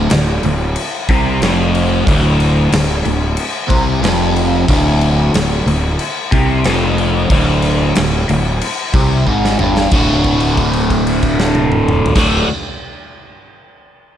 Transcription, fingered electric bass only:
0.11 0.42 D1 medium
0.44 0.74 D1 medium
1.09 1.40 C2 loud
1.42 2.03 F1 loud
2.07 2.69 D1 loud
2.72 3.03 D1 medium
3.06 3.36 D1 medium
3.71 4.01 C2 loud
4.03 4.65 F1 loud
4.69 5.30 D1 loud
5.34 5.65 D1 medium
5.66 5.97 D1 medium
6.33 6.63 C2 loud
6.66 7.27 F1 loud
7.31 7.92 D1 loud
7.97 8.27 D1 medium
8.29 8.60 D1 medium
8.94 9.25 C2 loud
9.27 9.58 G#1 loud
9.61 9.91 G1 medium
9.92 12.04 D1 medium
12.16 12.43 D1 medium

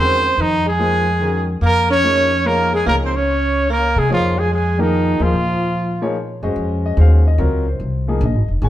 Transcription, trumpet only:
0.00 0.43 C5 loud
0.41 0.67 D#4 medium
0.68 1.46 G#4 medium
1.65 1.89 A#4 loud
1.92 2.48 C#5 loud
2.46 2.73 A#4 medium
2.75 2.86 G#4 medium
2.88 2.96 A#4 medium
3.05 3.17 C5 medium
3.16 3.70 C#5 medium
3.71 4.00 A#4 medium
3.99 4.11 G#4 medium
4.12 4.41 F4 loud
4.39 4.52 G#4 medium
4.54 4.83 G#4 medium
4.81 5.24 D#4 medium
5.23 6.17 F4 medium

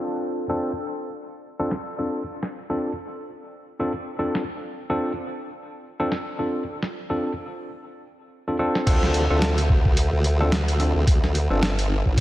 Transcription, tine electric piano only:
0.00 0.46 C4 medium
0.00 0.46 D4 medium
0.00 0.46 F4 medium
0.00 0.46 A4 medium
0.49 0.71 C4 medium
0.49 0.71 D4 medium
0.49 0.71 F4 medium
0.49 0.71 A4 loud
1.59 1.71 C4 medium
1.59 1.71 D4 medium
1.59 1.71 F4 medium
1.59 1.71 A4 loud
1.99 2.22 C4 medium
1.99 2.22 D4 medium
1.99 2.22 F4 medium
1.99 2.22 A4 medium
2.70 2.91 C4 medium
2.70 2.91 D4 medium
2.70 2.91 F4 medium
2.70 2.91 A4 medium
3.80 3.91 C4 medium
3.80 3.92 D4 medium
3.80 3.91 F4 medium
3.80 3.92 A4 medium
4.19 4.42 C4 medium
4.19 4.42 D4 medium
4.19 4.42 F4 medium
4.19 4.42 A4 medium
4.90 5.11 C4 medium
4.90 5.11 D4 medium
4.90 5.11 F4 medium
4.90 5.11 A4 loud
6.00 6.12 C4 medium
6.00 6.12 D4 medium
6.00 6.12 F4 medium
6.00 6.12 A4 loud
6.39 6.62 C4 medium
6.39 6.62 D4 medium
6.39 6.62 F4 medium
6.39 6.62 A4 medium
7.10 7.32 C4 medium
7.10 7.31 D4 medium
7.10 7.32 F4 medium
7.10 7.32 A4 medium
8.48 8.56 C4 medium
8.48 8.56 D4 medium
8.48 8.56 F4 medium
8.48 8.56 A4 medium
8.59 8.86 C4 medium
8.59 8.86 D4 medium
8.59 8.85 F4 medium
8.59 8.86 A4 medium
8.87 9.24 C4 loud
8.87 9.24 D4 medium
8.87 9.24 F4 medium
8.87 9.24 A4 loud
9.30 9.52 C4 medium
9.30 9.52 D4 medium
9.30 9.52 F4 medium
9.30 9.52 A4 loud
10.40 10.52 C4 medium
10.40 10.52 D4 medium
10.40 10.52 F4 medium
10.40 10.52 A4 loud
10.80 11.03 C4 medium
10.80 11.03 D4 medium
10.80 11.03 F4 medium
10.80 11.03 A4 medium
11.50 11.72 C4 medium
11.50 11.72 D4 medium
11.50 11.72 F4 medium
11.50 11.72 A4 loud

